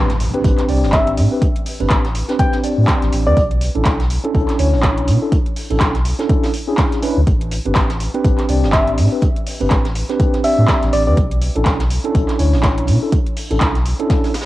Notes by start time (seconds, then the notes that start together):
Already playing: A1, impact
0.09 snare, closed hi-hat
0.20 closed hi-hat, open hi-hat
0.34 C4 D4 G4 B4, closed hi-hat
0.44 A1 C4 D4 G4 B4, kick, closed hi-hat
0.58 snare, clap, closed hi-hat
0.68 C2 C4 D4 G4 D5, closed hi-hat, open hi-hat
0.83 G1, snare
0.92 E5, kick, snare, clap, closed hi-hat
1.07 A1, closed hi-hat
1.17 A2, closed hi-hat, open hi-hat
1.31 C4 D4 G4 B4
1.42 kick, closed hi-hat
1.56 closed hi-hat
1.66 open hi-hat
1.80 G1 C4 D4 G4 B4, closed hi-hat
1.90 A1, kick, snare, clap, closed hi-hat
2.05 snare, closed hi-hat
2.15 closed hi-hat, open hi-hat
2.28 C4 D4 G4 B4, snare, closed hi-hat
2.39 C4 D4 G4 B4 G5, kick, closed hi-hat
2.52 snare, closed hi-hat
2.63 C4 D4 G4 D5, closed hi-hat, open hi-hat
2.78 A2
2.88 kick, snare, clap, closed hi-hat
3.02 A1, snare, closed hi-hat
3.12 A1, closed hi-hat, open hi-hat
3.26 E2 C4 D4 G4 B4 D5
3.37 B1, kick, closed hi-hat
3.51 closed hi-hat
3.61 closed hi-hat, open hi-hat
3.75 A1 C#4 D4 E4 A4, closed hi-hat
3.85 B1, kick, snare, clap, closed hi-hat
4.00 snare, closed hi-hat
4.10 closed hi-hat, open hi-hat
4.24 C#4 D4 E4 A4, closed hi-hat
4.34 B1 C#4 D4 E4 A4, kick, closed hi-hat
4.48 snare, clap, closed hi-hat
4.58 D2 C#4 D4 E4 C#5, closed hi-hat, open hi-hat
4.73 A1, snare
4.83 kick, snare, clap, closed hi-hat
4.97 B1, closed hi-hat
5.07 B2, closed hi-hat, open hi-hat
5.21 C#4 D4 E4 A4
5.32 kick, closed hi-hat
5.46 closed hi-hat
5.56 open hi-hat
5.70 A1 C#4 D4 E4 A4, closed hi-hat
5.80 B1, kick, snare, clap, closed hi-hat
5.95 snare, closed hi-hat
6.05 closed hi-hat, open hi-hat
6.19 C#4 D4 E4 A4, snare, closed hi-hat
6.29 C#4 D4 E4 A4, kick, closed hi-hat
6.43 snare, open hi-hat
6.54 closed hi-hat, open hi-hat
6.68 C#4 D4 E4 G#4
6.78 kick, snare, clap, closed hi-hat
6.92 snare, closed hi-hat
7.02 C#4 D4 E4 B4, closed hi-hat, open hi-hat
7.17 D2
7.27 A1, kick, closed hi-hat
7.41 closed hi-hat
7.51 closed hi-hat, open hi-hat
7.65 G1 C4 D4 G4 B4, closed hi-hat
7.75 A1, kick, snare, clap, closed hi-hat
7.90 snare, closed hi-hat
8.00 closed hi-hat, open hi-hat
8.14 C4 D4 G4 B4, closed hi-hat
8.24 A1 C4 D4 G4 B4, kick, closed hi-hat
8.38 snare, clap, closed hi-hat
8.48 C2 C4 D4 G4 D5, closed hi-hat, open hi-hat
8.63 G1, snare
8.73 E5, kick, snare, clap, closed hi-hat
8.88 A1, closed hi-hat
8.98 A2, closed hi-hat, open hi-hat
9.12 C4 D4 G4 B4
9.22 kick, closed hi-hat
9.36 closed hi-hat
9.46 open hi-hat
9.60 G1 C4 D4 G4 B4, closed hi-hat
9.70 A1, kick, snare, clap, closed hi-hat
9.85 snare, closed hi-hat
9.95 closed hi-hat, open hi-hat
10.09 C4 D4 G4 B4, snare, closed hi-hat
10.19 C4 D4 G4 B4, kick, closed hi-hat
10.34 snare, closed hi-hat
10.43 C4 D4 G4 D5 E5, closed hi-hat, open hi-hat
10.58 A2
10.68 kick, snare, clap, closed hi-hat
10.83 A1, snare, closed hi-hat
10.93 A1 D5, closed hi-hat, open hi-hat
11.07 E2 C4 D4 G4 B4 D5
11.17 B1, kick, closed hi-hat
11.31 closed hi-hat
11.41 closed hi-hat, open hi-hat
11.56 A1 C#4 D4 E4 A4, closed hi-hat
11.66 B1, kick, snare, clap, closed hi-hat
11.80 snare, closed hi-hat
11.90 closed hi-hat, open hi-hat
12.04 C#4 D4 E4 A4, closed hi-hat
12.15 B1 C#4 D4 E4 A4, kick, closed hi-hat
12.29 snare, clap, closed hi-hat
12.39 D2 C#4 D4 E4 C#5, closed hi-hat, open hi-hat
12.53 A1, snare
12.63 kick, snare, clap, closed hi-hat
12.78 B1, closed hi-hat
12.87 B2, closed hi-hat, open hi-hat
13.02 C#4 D4 E4 A4
13.12 kick, closed hi-hat
13.27 closed hi-hat
13.37 open hi-hat
13.51 A1 C#4 D4 E4 A4, closed hi-hat
13.61 B1, kick, snare, clap, closed hi-hat
13.75 snare, closed hi-hat
13.85 closed hi-hat, open hi-hat
13.99 C#4 D4 E4 A4, closed hi-hat
14.10 C#4 D4, kick, snare, closed hi-hat
14.24 snare, open hi-hat
14.34 snare, closed hi-hat, open hi-hat
14.41 snare, closed hi-hat